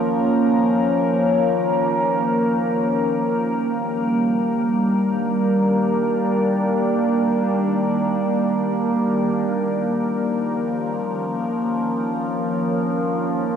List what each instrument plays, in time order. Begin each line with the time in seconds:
Already playing: synth drone D#3 A#3, ambient pad F3 A#3 C#4 A#4
3.20 ambient pad G3
3.26 ambient pad A#3
3.82 ambient pad D4
9.59 ambient pad F3
10.46 ambient pad C#4